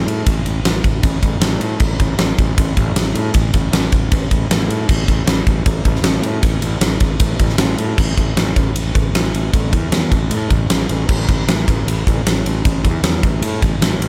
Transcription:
0.07 fingered electric bass A2, ride
0.26 fingered electric bass A1, kick, ride
0.45 fingered electric bass A1, ride
0.64 fingered electric bass A1, snare, ride
0.84 fingered electric bass A1, kick, ride
1.03 fingered electric bass A1, kick, ride
1.23 fingered electric bass A1, kick, ride
1.40 fingered electric bass A1, snare, ride
1.59 fingered electric bass A2, ride
1.80 fingered electric bass A1, kick, crash
2.00 fingered electric bass A1, kick, ride
2.18 fingered electric bass A1, snare, ride
2.38 fingered electric bass A1, kick, ride
2.58 fingered electric bass A1, kick, ride
2.77 fingered electric bass A1, kick, ride
2.96 fingered electric bass A1, snare, ride
3.15 fingered electric bass A2, ride
3.34 fingered electric bass A1, kick, ride
3.54 fingered electric bass A1, kick, ride
3.72 fingered electric bass A1, snare, ride
3.92 fingered electric bass A1, kick, ride
4.12 fingered electric bass A1, kick, ride
4.31 fingered electric bass A1, kick, ride
4.50 fingered electric bass A1, snare, ride
4.68 fingered electric bass A2, ride
4.89 fingered electric bass A1, kick, crash
5.08 fingered electric bass A1, kick, ride
5.26 fingered electric bass A1, snare, ride
5.47 fingered electric bass A1, kick, ride
5.66 fingered electric bass A1, kick, ride
5.85 fingered electric bass A1, kick, ride
5.95 snare
6.03 fingered electric bass A1, snare, ride
6.23 fingered electric bass A2, ride
6.43 fingered electric bass A1, kick, ride
6.62 fingered electric bass A1, ride
6.81 fingered electric bass A1, snare, ride
7.00 fingered electric bass A1, kick, ride
7.20 fingered electric bass A1, kick, ride
7.39 fingered electric bass A1, kick, ride
7.49 snare
7.58 fingered electric bass A1, snare, ride
7.78 fingered electric bass A2, ride
7.98 fingered electric bass A1, kick, crash
8.17 fingered electric bass A1, kick, ride
8.36 fingered electric bass A1, snare, ride
8.56 fingered electric bass A1, kick, ride
8.75 fingered electric bass A1, ride
8.95 fingered electric bass A1, kick, ride
9.13 fingered electric bass A1, snare, ride
9.34 fingered electric bass A1, ride
9.53 fingered electric bass A1, kick, ride
9.73 fingered electric bass E2, kick, ride
9.92 fingered electric bass E2, snare, ride
10.12 fingered electric bass A1, kick, ride
10.30 fingered electric bass A2, ride
10.50 fingered electric bass A1, kick, ride
10.70 fingered electric bass A1, snare, ride
10.89 fingered electric bass A1, ride
11.09 fingered electric bass A1, kick, crash
11.29 fingered electric bass A1, kick, ride
11.48 fingered electric bass A1, snare, ride
11.68 fingered electric bass A1, kick, ride
11.86 fingered electric bass A1, ride
12.07 fingered electric bass A1, kick, ride
12.25 fingered electric bass A1, snare, ride
12.46 fingered electric bass A1, ride
12.65 fingered electric bass A1, kick, ride
12.84 fingered electric bass E2, kick, ride
13.03 fingered electric bass E2, snare, ride
13.23 fingered electric bass A1, kick, ride
13.42 fingered electric bass A2, ride
13.62 fingered electric bass A1, kick, ride
13.80 fingered electric bass A1, snare, ride
13.99 fingered electric bass A1, ride

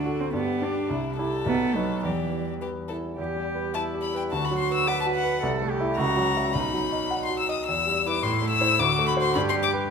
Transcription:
Already playing: grand piano D2, cello D4, violin F#4
0.06 grand piano F#4 A4
0.20 cello C4
0.33 grand piano G2, cello B3, violin G4
0.61 grand piano D4 G4, cello D4
0.90 grand piano C2, violin E4
1.17 grand piano E4 G4, violin A4
1.46 grand piano B1, cello B3
1.75 cello F#3, grand piano D#4 B4
2.03 grand piano E2, cello E3, violin G4
2.32 grand piano G3
2.61 violin G4, grand piano B4
2.88 grand piano E4, violin A4
3.18 grand piano E2, cello G4
3.36 grand piano G3
3.55 grand piano B4
3.74 cello E4, grand piano E5, violin A5
3.94 grand piano G4
4.02 violin B5
4.14 grand piano B4, violin G5
4.31 grand piano D2, cello F#4, violin A5
4.45 violin B5
4.51 grand piano F#3
4.59 violin C6
4.70 grand piano B4
4.74 violin E6
4.87 cello B4, grand piano F#5, violin D6
5.01 violin A5
5.06 grand piano F#4
5.15 violin F#5
5.24 grand piano B4
5.43 grand piano C2, cello A4
5.62 grand piano A3
5.70 cello G4
5.80 grand piano E4 E5
5.97 grand piano C#2, cello F#4, violin A#5
6.17 grand piano F#3
6.37 grand piano F#4 E5
6.53 grand piano B1, cello D#4, violin B5
6.74 grand piano F#3
6.92 grand piano D#5
7.11 grand piano F#5
7.25 violin C6
7.29 grand piano F#4
7.39 violin E6
7.49 grand piano D#5, violin D#6
7.67 grand piano E2, violin E6
7.87 grand piano G3
8.06 grand piano E4 B4, violin D6
8.23 grand piano A2, cello E4, violin C6
8.42 grand piano A3
8.51 violin E6
8.60 grand piano E4 C5
8.79 grand piano D2, cello F#4, violin D6
8.99 grand piano A3
9.07 violin B5
9.16 grand piano F#4 C5
9.21 violin C6
9.35 grand piano G2, cello G4, violin B5
9.49 violin C6
9.55 grand piano G3
9.63 violin D6
9.73 grand piano G4 B4

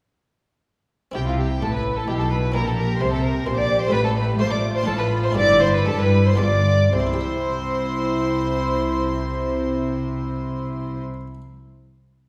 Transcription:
1.11 double bass section C2, harpsichord C3 C4 E4, cello section C3, viola section E4, violin section G4 G5, violin G4
1.27 violin section F4 F5, violin F4
1.38 violin section G4 G5, violin G4
1.61 double bass section A1, cello section A2, harpsichord A2, viola section E4, violin section A4 A5, violin A4
1.72 violin section B4 B5, violin B4
1.97 violin section A4 A5, violin A4
2.08 double bass section B1, harpsichord B2, cello section B2, violin G4, violin section G4 G5
2.19 violin A4, violin section A4 A5
2.30 violin section B4 B5, violin B4
2.52 double bass section A#1, cello section A#2, harpsichord A#2 C4 E4, viola section G4, violin A#4, violin section A#4 A#5
2.66 violin section A4 A5, violin A4
2.76 violin A#4, violin section A#4 A#5
3.00 double bass section C2, cello section C3, harpsichord C3, violin section C5 C6, violin C5
3.11 violin A4, violin section A4 A5
3.23 violin A#4, violin section A#4 A#5
3.45 double bass section A#1, cello section A#2, harpsichord A#2, viola section G4, violin C5, violin section C5 C6
3.57 violin D5, violin section D5 D6
3.81 violin section C5 C6, violin C5
3.88 harpsichord A3 C4 F4, violin B4, violin section B5
3.92 double bass section A1, harpsichord A2, cello section A2, violin section B4
4.05 violin A4, violin section A4 A5
4.16 violin section B4 B5, violin B4
4.39 double bass section A2, cello section A3, harpsichord A3, viola section F4, violin section C5 C6, violin C5
4.50 violin D5, violin section D5 D6
4.74 violin section C5 C6, violin C5
4.83 cello section A2, harpsichord C4 D4 F4, violin section A4, violin A4
4.87 double bass section A1, harpsichord A2, viola section F4, violin section A5
4.98 violin B4, violin section B4 B5
5.23 violin section C5 C6, violin C5
5.31 harpsichord C4 E4 G4, violin section D5
5.35 double bass section G1, cello section G2, harpsichord G2, viola section E4, violin D5, violin section D6
5.60 violin section C5 C6, violin C5
5.73 violin section B4 B5, violin B4
5.85 double bass section G2, harpsichord G3, cello section G3, viola section E4, violin section A4 A5, violin A4
5.98 violin section B4 B5, violin B4
6.26 violin C5, violin section C5 C6
6.34 harpsichord B3 F4 G4
6.38 double bass section G1, cello section G2, harpsichord G2, viola section F4, violin D5, violin section D5 D6
6.93 double bass section C2, harpsichord C3, cello section C3, viola section E4, violin C5, violin section C5 C6
7.00 harpsichord C4
7.07 harpsichord E4
7.14 harpsichord G4
7.21 harpsichord E5

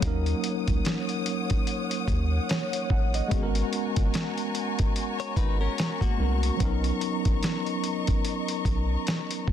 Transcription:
0.00 analog synth bass D#2, tine electric piano F#3 A#3 C#4, string section C#5 F#5 D#6, kick, closed hi-hat
0.05 tine electric piano D#4 A#4
0.26 closed hi-hat
0.44 closed hi-hat
0.68 analog synth bass C#2, kick, closed hi-hat
0.85 snare, closed hi-hat
1.09 closed hi-hat
1.26 closed hi-hat
1.50 kick, closed hi-hat
1.67 closed hi-hat
1.91 closed hi-hat
2.08 analog synth bass D#2, kick, closed hi-hat
2.49 tine electric piano C#5, snare, closed hi-hat
2.73 closed hi-hat
2.90 analog synth bass A1, tine electric piano F#5, kick
3.14 tine electric piano D#5, closed hi-hat
3.28 analog synth bass G#1, tine electric piano G#3 B3, string section G#5 A#5 C#6, kick, closed hi-hat
3.32 tine electric piano C#4 F#4
3.37 tine electric piano G#4
3.43 tine electric piano A#4
3.55 closed hi-hat
3.73 closed hi-hat
3.96 analog synth bass F#1, kick, closed hi-hat
4.14 snare, closed hi-hat
4.38 closed hi-hat
4.55 closed hi-hat
4.79 kick, closed hi-hat
4.96 closed hi-hat
5.20 clean electric guitar C#5, closed hi-hat
5.36 analog synth bass G#1, clean electric guitar D#4 B4, kick, closed hi-hat
5.61 clean electric guitar C#4 A#4
5.78 snare, closed hi-hat
6.01 clean electric guitar A#3 F#4, kick, closed hi-hat
6.18 analog synth bass C2, tine electric piano G#3 B3 C#4 F#4
6.22 tine electric piano A#4
6.43 closed hi-hat
6.56 analog synth bass B1, tine electric piano F#3 B3, string section D#5, kick, closed hi-hat
6.61 tine electric piano C#4 D#4
6.65 tine electric piano A#4
6.84 closed hi-hat
7.01 closed hi-hat
7.25 analog synth bass A#1, kick, closed hi-hat
7.43 snare, closed hi-hat
7.66 closed hi-hat
7.84 closed hi-hat
8.07 kick, closed hi-hat
8.25 closed hi-hat
8.48 closed hi-hat
8.65 analog synth bass B1, kick, closed hi-hat
9.07 snare, closed hi-hat
9.31 closed hi-hat
9.48 analog synth bass D2, kick

